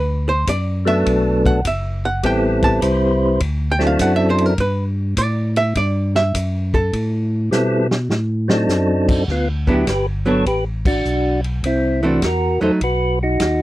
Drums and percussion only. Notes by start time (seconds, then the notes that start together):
0.47 kick, hi-hat pedal, ride
0.87 ride
1.06 kick, ride
1.46 kick
1.65 kick, hi-hat pedal, ride
2.23 kick, ride
2.62 kick, ride
2.82 kick, hi-hat pedal, ride
3.40 kick, ride
3.79 snare
3.99 kick, hi-hat pedal, ride
4.38 ride
4.58 kick, ride
5.17 kick, hi-hat pedal, ride
5.56 ride
5.75 kick, ride
6.15 snare
6.35 kick, hi-hat pedal, ride
6.74 kick
6.93 kick, ride
7.52 snare, hi-hat pedal
7.91 snare
8.10 snare
8.49 snare
8.69 snare, hi-hat pedal
9.08 kick, crash
9.28 kick, snare
9.68 kick
9.87 kick, snare, hi-hat pedal, ride
10.46 kick, ride
10.85 kick, crash
11.05 hi-hat pedal
11.44 ride
11.64 kick, ride
12.22 kick, snare, hi-hat pedal, ride
12.81 kick, ride
13.40 kick, snare, hi-hat pedal, ride